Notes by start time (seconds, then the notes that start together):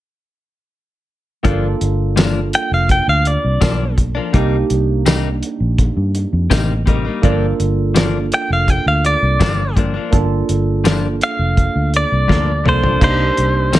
1.43 G1 G2 F3 A#3 D4 F4 A4, kick, closed hi-hat
1.81 G1, closed hi-hat
2.16 G2 F3 A#3 D4, snare, closed hi-hat, tambourine
2.53 G5, closed hi-hat
2.71 F1 F5
2.89 G5, kick, closed hi-hat
3.08 D2 F5
3.25 D5, closed hi-hat
3.44 C2
3.61 B1 G2 F3 A#3 D4, kick, snare, closed hi-hat, tambourine
3.98 kick, closed hi-hat
4.15 F3 A#3 D4
4.32 C2 C3 G3 A#3 D4 D#4 G4, kick, closed hi-hat
4.70 C2, closed hi-hat
5.06 C3 G3 A#3 D#4, snare, closed hi-hat, tambourine
5.43 closed hi-hat
5.60 A#1
5.78 kick, closed hi-hat
5.97 G2
6.15 closed hi-hat
6.33 F2
6.50 A1 C3 G3 A#3 D#4, kick, snare, closed hi-hat, tambourine
6.86 C3 G3 A#3 D#4, kick, closed hi-hat
7.05 G3 A#3 D#4
7.22 G1 G2 F3 A#3 D4 F4 A4, kick, closed hi-hat
7.60 G1, closed hi-hat
7.95 G2 F3 A#3 D4, snare, closed hi-hat, tambourine
8.32 G5, closed hi-hat
8.50 F1 F5
8.68 G5, kick, closed hi-hat
8.86 D2 F5
9.05 D5, closed hi-hat
9.22 C2
9.40 G1 G2 F3 A#3 D4, kick, snare, closed hi-hat, tambourine
9.76 G2 F3 A#3 D4, kick, closed hi-hat
9.94 F3 A#3 D4
10.10 G1 A#3 D4 F4 A4, kick, closed hi-hat
10.49 G1, closed hi-hat
10.84 G2 F3 A#3 D4, snare, closed hi-hat, tambourine
11.21 F5, closed hi-hat
11.39 F1
11.57 kick, closed hi-hat
11.75 D2
11.94 D5, closed hi-hat
12.12 C2
12.28 D2 G2 F3 A#3 D4, kick, snare
12.64 C2 G2 F3 A#3 D4 F4 A4, mid tom
12.69 C5
12.82 F3 A#3 D4, floor tom
12.99 C2 C3 G3 A#3 D4 D#4 G4, kick, closed hi-hat, crash
13.04 C5
13.37 C2, closed hi-hat
13.73 C3 G3 A#3 D#4, snare, closed hi-hat, tambourine